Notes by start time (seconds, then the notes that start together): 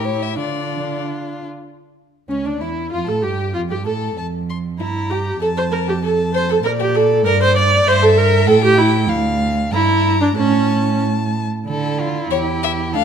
Already playing: A2 E4 G4
0.05 C#5
0.22 E5
0.36 D3 D4 F4 D5
2.29 C#2 C#4
2.45 D2 D4
2.61 E2 E4
2.91 F2 F4
3.06 A2 A4
3.22 G2 G4
3.54 F2 F4
3.70 G2 G4
3.85 A2 A4
4.16 F2 A5
4.50 C6
4.78 G2 E4 A#5
5.10 G4
5.40 F2 A4 A5
5.57 C5
5.72 A#4
5.87 G4
6.02 A4 A5
6.34 C5
6.49 A4
6.63 A#2 A#4 D5
6.80 G4
6.95 A4
7.24 G2 A#4 D5
7.41 C5
7.56 D5
7.86 G2 C5 E5
8.02 A4
8.18 A#4
8.46 A2 A4 G5
8.63 G4
8.78 E4
9.08 D2 F5
9.72 G2 E4 A#5
10.21 D4
10.35 A2 C#4 A5
11.67 D3 E4 A4
12.00 F4
12.31 E2 G4 C#5
12.63 E5
12.93 D2 D4 A4 F5